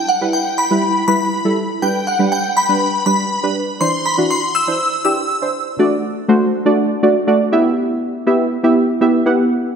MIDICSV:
0, 0, Header, 1, 3, 480
1, 0, Start_track
1, 0, Key_signature, 1, "minor"
1, 0, Tempo, 495868
1, 1764, Time_signature, 4, 2, 24, 8
1, 9445, End_track
2, 0, Start_track
2, 0, Title_t, "Synth bell"
2, 0, Program_c, 0, 98
2, 82, Note_on_c, 0, 78, 81
2, 306, Note_off_c, 0, 78, 0
2, 322, Note_on_c, 0, 79, 91
2, 562, Note_on_c, 0, 83, 112
2, 570, Note_off_c, 0, 79, 0
2, 1031, Note_off_c, 0, 83, 0
2, 1043, Note_on_c, 0, 83, 95
2, 1490, Note_off_c, 0, 83, 0
2, 1765, Note_on_c, 0, 79, 98
2, 2005, Note_on_c, 0, 78, 87
2, 2012, Note_off_c, 0, 79, 0
2, 2245, Note_on_c, 0, 79, 91
2, 2252, Note_off_c, 0, 78, 0
2, 2468, Note_off_c, 0, 79, 0
2, 2485, Note_on_c, 0, 83, 110
2, 2931, Note_off_c, 0, 83, 0
2, 2962, Note_on_c, 0, 83, 97
2, 3409, Note_off_c, 0, 83, 0
2, 3685, Note_on_c, 0, 84, 99
2, 3926, Note_on_c, 0, 83, 86
2, 3931, Note_off_c, 0, 84, 0
2, 4167, Note_on_c, 0, 84, 100
2, 4172, Note_off_c, 0, 83, 0
2, 4404, Note_on_c, 0, 88, 112
2, 4413, Note_off_c, 0, 84, 0
2, 4874, Note_off_c, 0, 88, 0
2, 4885, Note_on_c, 0, 88, 96
2, 5331, Note_off_c, 0, 88, 0
2, 9445, End_track
3, 0, Start_track
3, 0, Title_t, "Synth stab"
3, 0, Program_c, 1, 62
3, 204, Note_on_c, 1, 55, 72
3, 205, Note_on_c, 1, 64, 68
3, 209, Note_on_c, 1, 71, 85
3, 445, Note_off_c, 1, 55, 0
3, 445, Note_off_c, 1, 64, 0
3, 447, Note_off_c, 1, 71, 0
3, 683, Note_on_c, 1, 55, 76
3, 685, Note_on_c, 1, 64, 69
3, 688, Note_on_c, 1, 71, 85
3, 864, Note_off_c, 1, 55, 0
3, 865, Note_off_c, 1, 64, 0
3, 867, Note_off_c, 1, 71, 0
3, 1041, Note_on_c, 1, 55, 78
3, 1043, Note_on_c, 1, 64, 70
3, 1045, Note_on_c, 1, 71, 79
3, 1223, Note_off_c, 1, 55, 0
3, 1224, Note_off_c, 1, 64, 0
3, 1225, Note_off_c, 1, 71, 0
3, 1400, Note_on_c, 1, 55, 75
3, 1403, Note_on_c, 1, 64, 69
3, 1404, Note_on_c, 1, 69, 86
3, 1582, Note_off_c, 1, 55, 0
3, 1584, Note_off_c, 1, 64, 0
3, 1585, Note_off_c, 1, 69, 0
3, 1760, Note_on_c, 1, 55, 73
3, 1764, Note_on_c, 1, 62, 68
3, 1766, Note_on_c, 1, 71, 83
3, 1942, Note_off_c, 1, 55, 0
3, 1944, Note_off_c, 1, 62, 0
3, 1945, Note_off_c, 1, 71, 0
3, 2119, Note_on_c, 1, 55, 76
3, 2122, Note_on_c, 1, 62, 71
3, 2123, Note_on_c, 1, 71, 85
3, 2362, Note_off_c, 1, 55, 0
3, 2364, Note_off_c, 1, 62, 0
3, 2364, Note_off_c, 1, 71, 0
3, 2599, Note_on_c, 1, 55, 79
3, 2601, Note_on_c, 1, 62, 71
3, 2604, Note_on_c, 1, 71, 86
3, 2782, Note_off_c, 1, 55, 0
3, 2783, Note_off_c, 1, 62, 0
3, 2784, Note_off_c, 1, 71, 0
3, 2959, Note_on_c, 1, 55, 74
3, 2963, Note_on_c, 1, 62, 68
3, 2965, Note_on_c, 1, 71, 79
3, 3142, Note_off_c, 1, 55, 0
3, 3144, Note_off_c, 1, 62, 0
3, 3145, Note_off_c, 1, 71, 0
3, 3321, Note_on_c, 1, 55, 81
3, 3323, Note_on_c, 1, 62, 71
3, 3325, Note_on_c, 1, 71, 86
3, 3503, Note_off_c, 1, 55, 0
3, 3504, Note_off_c, 1, 62, 0
3, 3505, Note_off_c, 1, 71, 0
3, 3681, Note_on_c, 1, 52, 76
3, 3683, Note_on_c, 1, 62, 68
3, 3685, Note_on_c, 1, 72, 80
3, 3863, Note_off_c, 1, 52, 0
3, 3864, Note_off_c, 1, 62, 0
3, 3865, Note_off_c, 1, 72, 0
3, 4041, Note_on_c, 1, 52, 79
3, 4043, Note_on_c, 1, 62, 73
3, 4046, Note_on_c, 1, 66, 90
3, 4283, Note_off_c, 1, 52, 0
3, 4284, Note_off_c, 1, 62, 0
3, 4286, Note_off_c, 1, 66, 0
3, 4521, Note_on_c, 1, 52, 82
3, 4523, Note_on_c, 1, 62, 72
3, 4526, Note_on_c, 1, 72, 92
3, 4703, Note_off_c, 1, 52, 0
3, 4704, Note_off_c, 1, 62, 0
3, 4705, Note_off_c, 1, 72, 0
3, 4882, Note_on_c, 1, 52, 79
3, 4885, Note_on_c, 1, 62, 67
3, 4886, Note_on_c, 1, 67, 85
3, 5063, Note_off_c, 1, 52, 0
3, 5065, Note_off_c, 1, 62, 0
3, 5066, Note_off_c, 1, 67, 0
3, 5241, Note_on_c, 1, 52, 77
3, 5244, Note_on_c, 1, 62, 71
3, 5247, Note_on_c, 1, 72, 90
3, 5423, Note_off_c, 1, 52, 0
3, 5424, Note_off_c, 1, 62, 0
3, 5426, Note_off_c, 1, 72, 0
3, 5603, Note_on_c, 1, 57, 91
3, 5605, Note_on_c, 1, 62, 84
3, 5608, Note_on_c, 1, 66, 83
3, 5609, Note_on_c, 1, 74, 103
3, 5844, Note_off_c, 1, 57, 0
3, 5845, Note_off_c, 1, 62, 0
3, 5847, Note_off_c, 1, 66, 0
3, 5847, Note_off_c, 1, 74, 0
3, 6082, Note_on_c, 1, 57, 95
3, 6085, Note_on_c, 1, 62, 85
3, 6086, Note_on_c, 1, 66, 87
3, 6087, Note_on_c, 1, 72, 99
3, 6264, Note_off_c, 1, 57, 0
3, 6265, Note_off_c, 1, 62, 0
3, 6265, Note_off_c, 1, 66, 0
3, 6266, Note_off_c, 1, 72, 0
3, 6441, Note_on_c, 1, 57, 94
3, 6442, Note_on_c, 1, 62, 89
3, 6445, Note_on_c, 1, 66, 86
3, 6446, Note_on_c, 1, 74, 107
3, 6623, Note_off_c, 1, 57, 0
3, 6624, Note_off_c, 1, 62, 0
3, 6625, Note_off_c, 1, 66, 0
3, 6626, Note_off_c, 1, 74, 0
3, 6802, Note_on_c, 1, 57, 89
3, 6803, Note_on_c, 1, 62, 85
3, 6804, Note_on_c, 1, 66, 83
3, 6805, Note_on_c, 1, 74, 101
3, 6923, Note_off_c, 1, 57, 0
3, 6924, Note_off_c, 1, 62, 0
3, 6924, Note_off_c, 1, 66, 0
3, 6925, Note_off_c, 1, 74, 0
3, 7039, Note_on_c, 1, 57, 92
3, 7041, Note_on_c, 1, 62, 84
3, 7042, Note_on_c, 1, 66, 84
3, 7044, Note_on_c, 1, 74, 102
3, 7281, Note_off_c, 1, 57, 0
3, 7281, Note_on_c, 1, 59, 101
3, 7282, Note_off_c, 1, 62, 0
3, 7282, Note_on_c, 1, 64, 96
3, 7283, Note_off_c, 1, 66, 0
3, 7283, Note_on_c, 1, 67, 91
3, 7284, Note_off_c, 1, 74, 0
3, 7285, Note_on_c, 1, 76, 111
3, 7858, Note_off_c, 1, 59, 0
3, 7859, Note_off_c, 1, 64, 0
3, 7860, Note_off_c, 1, 67, 0
3, 7861, Note_off_c, 1, 76, 0
3, 8000, Note_on_c, 1, 59, 95
3, 8001, Note_on_c, 1, 64, 81
3, 8003, Note_on_c, 1, 67, 89
3, 8005, Note_on_c, 1, 76, 100
3, 8183, Note_off_c, 1, 59, 0
3, 8183, Note_off_c, 1, 64, 0
3, 8184, Note_off_c, 1, 67, 0
3, 8185, Note_off_c, 1, 76, 0
3, 8357, Note_on_c, 1, 59, 94
3, 8360, Note_on_c, 1, 64, 92
3, 8360, Note_on_c, 1, 67, 89
3, 8362, Note_on_c, 1, 76, 106
3, 8541, Note_off_c, 1, 59, 0
3, 8543, Note_off_c, 1, 64, 0
3, 8543, Note_off_c, 1, 67, 0
3, 8544, Note_off_c, 1, 76, 0
3, 8721, Note_on_c, 1, 59, 91
3, 8722, Note_on_c, 1, 64, 80
3, 8724, Note_on_c, 1, 67, 83
3, 8725, Note_on_c, 1, 76, 103
3, 8843, Note_off_c, 1, 59, 0
3, 8843, Note_off_c, 1, 64, 0
3, 8844, Note_off_c, 1, 67, 0
3, 8845, Note_off_c, 1, 76, 0
3, 8960, Note_on_c, 1, 59, 92
3, 8963, Note_on_c, 1, 64, 85
3, 8963, Note_on_c, 1, 67, 85
3, 8966, Note_on_c, 1, 78, 98
3, 9203, Note_off_c, 1, 59, 0
3, 9204, Note_off_c, 1, 64, 0
3, 9204, Note_off_c, 1, 67, 0
3, 9205, Note_off_c, 1, 78, 0
3, 9445, End_track
0, 0, End_of_file